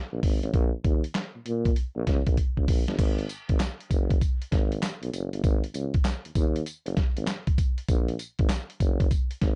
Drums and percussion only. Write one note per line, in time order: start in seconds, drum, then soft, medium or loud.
0.23 kick medium
0.23 open hi-hat medium
0.43 closed hi-hat soft
0.54 kick loud
0.54 closed hi-hat medium
0.84 kick loud
0.84 closed hi-hat medium
1.04 closed hi-hat medium
1.15 snare loud
1.15 clap loud
1.15 closed hi-hat medium
1.46 closed hi-hat medium
1.65 kick loud
1.65 closed hi-hat medium
1.76 closed hi-hat medium
2.07 kick medium
2.07 snare medium
2.07 closed hi-hat medium
2.27 kick medium
2.27 closed hi-hat medium
2.37 kick medium
2.37 closed hi-hat medium
2.57 kick medium
2.68 kick medium
2.68 open hi-hat medium
2.88 snare medium
2.88 closed hi-hat medium
2.99 kick loud
2.99 closed hi-hat medium
2.99 crash medium
2.99 tambourine medium
3.19 closed hi-hat medium
3.29 closed hi-hat medium
3.29 tambourine medium
3.49 kick medium
3.49 closed hi-hat medium
3.60 snare loud
3.60 clap loud
3.60 closed hi-hat medium
3.60 tambourine loud
3.80 closed hi-hat soft
3.91 kick medium
3.91 closed hi-hat medium
3.91 tambourine medium
4.10 kick loud
4.10 closed hi-hat medium
4.21 kick medium
4.21 closed hi-hat medium
4.21 tambourine medium
4.42 closed hi-hat medium
4.52 kick loud
4.52 snare medium
4.52 closed hi-hat medium
4.72 closed hi-hat medium
4.82 snare loud
4.82 clap loud
4.82 closed hi-hat medium
4.82 tambourine loud
5.03 closed hi-hat medium
5.13 closed hi-hat medium
5.13 tambourine medium
5.33 closed hi-hat medium
5.44 kick loud
5.44 closed hi-hat medium
5.44 tambourine medium
5.64 closed hi-hat medium
5.74 closed hi-hat medium
5.74 tambourine medium
5.94 kick loud
5.94 closed hi-hat soft
6.05 snare loud
6.05 clap loud
6.05 closed hi-hat medium
6.05 tambourine loud
6.25 closed hi-hat soft
6.35 kick medium
6.35 closed hi-hat medium
6.35 tambourine medium
6.56 closed hi-hat medium
6.66 closed hi-hat medium
6.66 tambourine medium
6.86 closed hi-hat medium
6.97 kick medium
6.97 snare medium
6.97 closed hi-hat medium
7.17 closed hi-hat medium
7.27 snare loud
7.27 clap loud
7.27 closed hi-hat medium
7.27 tambourine loud
7.47 kick loud
7.47 closed hi-hat medium
7.58 kick medium
7.58 closed hi-hat medium
7.58 tambourine medium
7.78 closed hi-hat medium
7.88 kick loud
7.88 closed hi-hat medium
7.88 tambourine medium
8.08 closed hi-hat medium
8.19 closed hi-hat medium
8.19 tambourine medium
8.39 kick loud
8.39 closed hi-hat medium
8.49 snare loud
8.49 clap loud
8.49 closed hi-hat medium
8.49 tambourine loud
8.70 closed hi-hat soft
8.80 kick medium
8.80 closed hi-hat medium
8.80 tambourine medium
9.00 kick loud
9.00 closed hi-hat medium
9.11 kick medium
9.11 closed hi-hat medium
9.11 tambourine medium
9.31 closed hi-hat medium
9.41 kick loud
9.41 snare medium
9.41 closed hi-hat medium